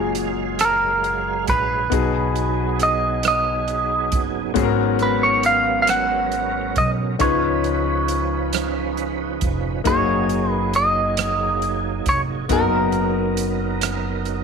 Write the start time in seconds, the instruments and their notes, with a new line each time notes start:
Already playing: upright bass F#1, grand piano A#2 F4 F#4 G#4, tonewheel organ F#3 G#3 G#4 F5, clean electric guitar G#4
0.15 closed hi-hat
0.59 clean electric guitar A#4, cross-stick, closed hi-hat
1.04 closed hi-hat
1.47 upright bass A#1, clean electric guitar B4, kick, closed hi-hat
1.90 upright bass B1, grand piano B2 B3 D#4 F#4 G#4, tonewheel organ F#3 B3 D#4 G#4, kick, closed hi-hat
2.36 closed hi-hat
2.80 clean electric guitar D#5, closed hi-hat
3.23 cross-stick, closed hi-hat
3.28 clean electric guitar D#5
3.68 closed hi-hat
4.12 upright bass F#1, kick, closed hi-hat
4.54 upright bass G#1, grand piano G#2 B3 C#4 F#4 G#4, tonewheel organ F#3 B3 C#4 A#4, kick, closed hi-hat
4.63 grand piano A#4
4.99 clean electric guitar B4, closed hi-hat
5.23 clean electric guitar C#5
5.43 clean electric guitar F5, closed hi-hat
5.82 clean electric guitar F5
5.87 clean electric guitar F#5, cross-stick, closed hi-hat
6.32 closed hi-hat
6.76 upright bass B1, clean electric guitar D#5, kick, closed hi-hat
7.19 upright bass C#2, grand piano C#3 C#4 D#4 F4 B4, tonewheel organ F3 C#4 D#4 B4, clean electric guitar C#5, kick, closed hi-hat
7.64 closed hi-hat
8.08 closed hi-hat
8.53 cross-stick, closed hi-hat
8.97 closed hi-hat
9.41 upright bass F1, kick, closed hi-hat
9.84 upright bass F#1, tonewheel organ F#3 A#3 D#4 F#4, grand piano A#3 D#4 F#4 G#4, clean electric guitar C#5, kick, closed hi-hat
9.92 tonewheel organ G#4
10.29 closed hi-hat
10.52 clean electric guitar B4
10.73 clean electric guitar D#5, closed hi-hat
11.17 cross-stick, closed hi-hat
11.62 closed hi-hat
12.06 upright bass F1, clean electric guitar C#5, kick, closed hi-hat
12.49 upright bass F#1, tonewheel organ F#3 B3 D#4 A#4, grand piano B3 D#4 F#4 A#4, clean electric guitar A#4, kick, closed hi-hat
12.92 closed hi-hat
13.37 closed hi-hat
13.81 cross-stick, closed hi-hat
14.25 closed hi-hat